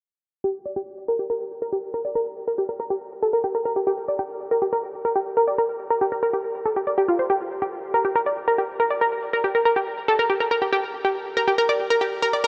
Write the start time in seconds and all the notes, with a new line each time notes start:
0.44 G4
0.66 D5
0.76 G4
1.08 A#4
1.19 G4
1.30 A#4
1.62 A#4
1.73 G4
1.94 A#4
2.05 D5
2.15 A#4
2.48 A#4
2.58 G4
2.69 A#4
2.80 A#4
2.90 G4
3.22 A4
3.33 A#4
3.44 G4
3.55 A#4
3.65 A#4
3.76 G4
3.87 G4
4.08 D5
4.19 G4
4.51 A#4
4.62 G4
4.73 A#4
5.05 A#4
5.16 G4
5.37 A#4
5.48 D5
5.58 A#4
5.90 A#4
6.01 G4
6.12 A#4
6.23 A#4
6.33 G4
6.66 A4
6.76 G4
6.87 D5
6.98 G4
7.08 F4
7.19 C5
7.30 G4
7.62 G4
7.94 A#4
8.05 G4
8.16 A#4
8.26 D5
8.48 A#4
8.58 G4
8.80 A#4
8.90 D5
9.01 A#4
9.33 A#4
9.44 G4
9.55 A#4
9.65 A#4
9.76 G4
10.08 A4
10.19 A#4
10.30 G4
10.40 A#4
10.51 A#4
10.62 G4
10.73 G4
11.05 G4
11.37 A#4
11.48 G4
11.58 A#4
11.69 D5
11.90 A#4
12.01 G4
12.22 A#4
12.33 D5
12.44 A#4